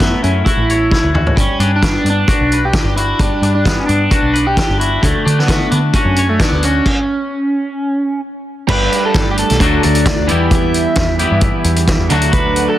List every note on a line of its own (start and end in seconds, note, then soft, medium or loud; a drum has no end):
0.00 0.14 F#2 medium
0.00 0.95 F#3 medium
0.00 1.14 A3 medium
0.00 0.23 B3 medium
0.00 0.22 E4 medium
0.00 0.46 F#4 medium
0.00 kick medium
0.00 snare medium
0.00 closed hi-hat medium
0.23 0.42 F#2 medium
0.23 0.44 C#4 medium
0.23 0.91 E4 medium
0.23 closed hi-hat soft
0.45 1.10 E4 medium
0.45 1.14 F#4 medium
0.45 kick medium
0.45 closed hi-hat medium
0.57 0.94 A1 medium
0.70 1.38 C#5 medium
0.70 closed hi-hat medium
0.91 1.37 E4 medium
0.91 kick medium
0.91 snare soft
1.03 1.31 D2 medium
1.14 1.39 F#4 medium
1.14 mid tom medium
1.27 floor tom medium
1.36 1.46 G1 medium
1.36 2.51 G3 medium
1.36 1.70 C#4 medium
1.36 kick medium
1.36 closed hi-hat medium
1.59 1.96 G2 medium
1.59 2.05 D4 medium
1.59 closed hi-hat medium
1.76 2.09 D4 medium
1.83 2.97 B3 medium
1.83 kick medium
1.83 snare loud
1.83 closed hi-hat medium
2.04 2.23 G2 medium
2.04 2.75 D4 medium
2.04 closed hi-hat medium
2.10 2.67 D4 medium
2.28 2.98 F#4 medium
2.28 kick loud
2.28 closed hi-hat medium
2.40 2.77 B1 medium
2.52 3.67 B4 soft
2.52 closed hi-hat medium
2.65 2.96 G4 medium
2.73 3.42 D4 medium
2.73 kick loud
2.73 snare medium
2.73 closed hi-hat medium
2.84 3.12 G1 medium
2.96 3.18 E4 medium
2.96 4.11 F#4 medium
2.96 closed hi-hat medium
3.19 3.29 G1 medium
3.19 4.35 G3 medium
3.19 3.52 D4 medium
3.19 kick loud
3.19 closed hi-hat medium
3.42 3.79 G2 medium
3.42 3.88 D4 medium
3.42 closed hi-hat medium
3.55 3.79 D4 medium
3.65 4.80 B3 medium
3.65 kick medium
3.65 snare medium
3.65 closed hi-hat medium
3.79 3.86 C#4 medium
3.87 4.07 G2 medium
3.87 4.47 D4 medium
3.87 4.57 D4 medium
3.87 closed hi-hat soft
4.11 4.80 F#4 medium
4.11 kick medium
4.11 closed hi-hat medium
4.22 4.59 B1 medium
4.34 5.03 B4 medium
4.34 closed hi-hat medium
4.47 4.78 G4 medium
4.57 5.25 D4 medium
4.57 kick medium
4.57 snare loud
4.57 closed hi-hat medium
4.69 4.97 G1 medium
4.79 5.03 E4 medium
4.79 5.95 F#4 medium
4.79 closed hi-hat medium
5.01 5.12 D2 medium
5.01 6.17 D3 medium
5.01 5.39 A3 medium
5.01 kick medium
5.01 closed hi-hat medium
5.25 5.63 D3 medium
5.25 5.70 D4 medium
5.25 closed hi-hat medium
5.39 5.70 B3 medium
5.39 snare soft
5.47 6.63 A3 medium
5.47 kick loud
5.47 snare loud
5.47 closed hi-hat medium
5.71 5.90 D3 medium
5.71 5.77 B3 medium
5.71 6.39 D4 medium
5.71 closed hi-hat medium
5.94 6.27 C#4 medium
5.94 6.63 F#4 medium
5.94 kick medium
5.94 closed hi-hat medium
6.05 6.42 F#2 medium
6.16 6.87 C#5 medium
6.16 closed hi-hat medium
6.29 6.42 A3 medium
6.39 6.65 B3 medium
6.39 6.86 D4 medium
6.39 kick medium
6.39 snare medium
6.39 closed hi-hat medium
6.52 6.79 D2 medium
6.63 8.20 C#4 medium
6.63 6.87 F#4 medium
6.63 closed hi-hat medium
6.86 kick medium
6.86 crash medium
8.68 8.87 G1 medium
8.68 9.59 G3 medium
8.68 9.59 A3 medium
8.68 9.60 D4 medium
8.68 9.60 G4 medium
8.68 9.05 B4 medium
8.68 9.60 B4 medium
8.68 kick medium
8.68 crash loud
8.92 closed hi-hat medium
9.06 9.31 A4 medium
9.14 9.42 G1 medium
9.14 kick loud
9.14 snare loud
9.14 closed hi-hat medium
9.31 9.38 G4 medium
9.38 9.84 A4 medium
9.38 closed hi-hat medium
9.50 9.59 B1 medium
9.50 snare soft
9.50 closed hi-hat medium
9.60 9.79 D2 medium
9.60 10.27 D3 medium
9.60 10.27 F#3 medium
9.60 10.28 A3 medium
9.60 10.28 D4 medium
9.60 10.29 F#4 loud
9.60 kick medium
9.60 closed hi-hat medium
9.83 10.12 D2 medium
9.83 10.54 D5 medium
9.83 closed hi-hat medium
9.95 closed hi-hat medium
10.06 kick loud
10.06 snare loud
10.06 closed hi-hat medium
10.20 10.28 D2 medium
10.27 10.85 E2 medium
10.27 11.18 E3 medium
10.27 11.19 G3 medium
10.27 11.19 B3 medium
10.27 11.19 E4 medium
10.27 11.18 G4 medium
10.27 closed hi-hat medium
10.51 kick loud
10.51 closed hi-hat medium
10.55 12.09 E5 medium
10.74 closed hi-hat medium
10.95 11.24 E2 medium
10.95 kick loud
10.95 snare loud
10.95 closed hi-hat medium
11.19 12.11 E3 medium
11.19 12.11 G3 medium
11.19 12.10 B3 medium
11.19 12.10 E4 medium
11.19 12.09 G4 medium
11.19 closed hi-hat medium
11.31 11.50 G2 medium
11.41 kick loud
11.41 closed hi-hat medium
11.64 11.93 E2 medium
11.64 closed hi-hat medium
11.76 closed hi-hat medium
11.87 kick loud
11.87 snare loud
11.87 closed hi-hat medium
11.98 12.08 E2 medium
12.09 12.66 D2 medium
12.09 12.78 D3 medium
12.09 12.78 F#3 medium
12.09 12.78 A3 medium
12.09 12.78 D4 medium
12.09 12.78 F#4 loud
12.09 closed hi-hat medium
12.22 closed hi-hat medium
12.33 12.78 A4 medium
12.33 12.69 B4 medium
12.33 12.78 F#5 medium
12.33 12.78 D6 medium
12.33 kick loud
12.33 closed hi-hat medium
12.56 closed hi-hat medium
12.69 12.78 A4 medium